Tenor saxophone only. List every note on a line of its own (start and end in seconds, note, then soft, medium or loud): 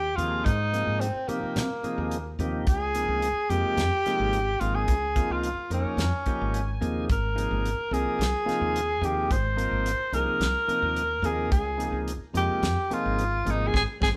0.00 0.17 G4 medium
0.16 0.46 F4 medium
0.45 1.02 D#4 medium
1.00 1.30 C4 medium
1.29 2.39 A#3 medium
2.68 3.51 G#4 medium
3.50 4.61 G4 loud
4.60 4.77 F4 medium
4.75 5.33 G#4 medium
5.32 5.72 F4 medium
5.74 6.79 C#4 medium
7.12 7.95 A#4 medium
7.93 9.07 G#4 medium
9.05 9.34 G4 medium
9.32 10.15 C5 loud
10.14 11.27 A#4 loud
11.25 11.51 G#4 medium
11.52 12.04 G#4 medium
12.37 12.95 G4 medium
12.93 13.52 F4 medium
13.50 13.68 D#4 medium
13.67 13.76 G#4 medium
13.76 13.82 G#4 medium
14.03 14.09 G#4 medium